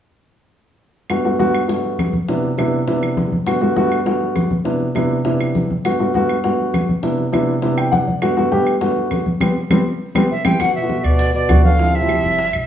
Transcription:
1.10 grand piano G2 A3 B3 F#4, high bongo, high conga, claves
1.25 grand piano G2 A3 B3 F#4, high bongo, high conga
1.39 grand piano G2 A3 B3 F#4, high bongo, high conga
1.55 high bongo, claves
1.68 grand piano G2 A3 B3 F#4, high bongo, high conga
1.84 high bongo, high conga
1.99 high bongo, low bongo, high conga, claves
2.13 high conga
2.28 grand piano C3 B3 D4 E4, high bongo, high conga
2.43 high bongo, high conga
2.58 grand piano C3 B3 D4 E4, high bongo, high conga, claves
2.72 high bongo, high conga
2.87 grand piano C3 B3 D4 E4, high bongo, high conga
3.02 high bongo, high conga, claves
3.17 high bongo, low bongo, high conga
3.32 high conga
3.46 grand piano G2 A3 B3 F#4, high bongo, high conga, claves
3.61 grand piano G2 A3 B3 F#4, high bongo, high conga
3.76 grand piano G2 A3 B3 F#4, high bongo, high conga
3.91 high bongo, claves
4.06 grand piano G2 A3 B3 F#4, high bongo, high conga
4.21 high bongo, high conga
4.36 high bongo, low bongo, high conga, claves
4.51 high conga
4.65 grand piano C3 B3 D4 E4, high bongo, high conga
4.80 high bongo, high conga
4.95 grand piano C3 B3 D4 E4, high bongo, high conga, claves
5.10 high bongo, high conga
5.25 grand piano C3 B3 D4 E4, high bongo, high conga
5.40 high bongo, high conga, claves
5.55 high bongo, low bongo, high conga
5.71 high conga
5.85 grand piano G2 A3 B3 F#4, high bongo, high conga, claves
5.99 grand piano G2 A3 B3 F#4, high bongo, high conga
6.14 grand piano G2 A3 B3 F#4, high bongo, high conga
6.29 high bongo, claves
6.44 grand piano G2 A3 B3 F#4, high bongo, high conga
6.59 high bongo, high conga
6.74 high bongo, low bongo, high conga, claves
6.89 high conga
7.03 grand piano C3 B3 D4 E4, high bongo, high conga
7.18 high bongo, high conga
7.32 grand piano C3 B3 D4 E4, high bongo, high conga, claves
7.48 high bongo, high conga
7.62 grand piano C3 B3 D4 E4, high bongo, high conga
7.78 grand piano G5, high bongo, high conga, claves
7.92 grand piano F#5, high bongo, low bongo, high conga
8.07 grand piano D5, high conga
8.22 grand piano G2 A3 B3 F#4, high bongo, high conga, claves
8.37 grand piano G2 A3 B3 F#4, high bongo, high conga
8.52 grand piano G2 A3 B3 G4, high bongo, high conga
8.67 high bongo, claves
8.81 grand piano G2 A3 B3 F#4, high bongo, high conga
8.96 high bongo, high conga
9.11 high bongo, low bongo, high conga, claves
9.26 high conga
9.40 grand piano G3 B3 C4, low bongo, high conga, claves
9.70 grand piano G3 B3 C4, low bongo, high conga, claves
10.15 grand piano G3 B3 C4, low bongo, high conga, claves
10.30 trombone C3, flute E5
10.44 trombone E3, grand piano G3 B3 C4, flute G5, low bongo, high conga, claves
10.59 upright bass G1, trombone D3, grand piano A3 B3 F#4, flute F#5, high bongo, high conga, claves
10.74 trombone B2, flute E5, high bongo, high conga
10.82 grand piano A3 B3 F#4
10.89 high bongo, high conga
11.04 upright bass D2, trombone B2, flute D5, high bongo, claves
11.19 high bongo, high conga
11.34 trombone B2, flute D5, high bongo, high conga
11.49 upright bass D2, grand piano A3 B3 F#4, high bongo, low bongo, high conga, claves
11.64 trombone D3, flute F5, high conga
11.79 grand piano F3 C4 E4, high bongo, high conga
11.94 trombone C3, flute E5, high bongo, high conga
12.01 grand piano F3 C4 E4
12.09 high bongo, high conga, claves
12.23 upright bass G1, high bongo, high conga
12.38 high bongo, high conga
12.53 upright bass B1, high bongo, high conga, claves

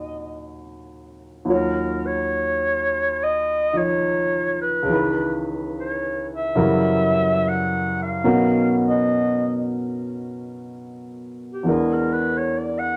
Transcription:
Already playing: grand piano D#2 D#3 F#3 F4 C#5, clarinet D#5
1.45 grand piano D#2 D#3 F#3 F4
1.50 clarinet A#4, grand piano C#5
2.06 clarinet C#5
3.24 clarinet D#5
3.73 grand piano D#3 F3 D#4
3.78 clarinet C#5
4.61 clarinet B4
4.82 grand piano C#2 C#3
4.88 grand piano D#3 E3
4.93 grand piano B4
5.79 clarinet C#5
6.34 clarinet E5
6.55 grand piano F#2 C#3 E3 G3 A#4
7.48 clarinet F#5
8.02 clarinet F5
8.24 grand piano B2 F#3 C#4 D#4 A#4
8.86 clarinet D#5
11.51 clarinet G4
11.63 grand piano E2 E3 G#3 D4
11.68 clarinet G#4, grand piano A#4
11.94 clarinet A#4
12.12 clarinet B4
12.37 clarinet C#5
12.58 clarinet D5
12.79 clarinet F#5

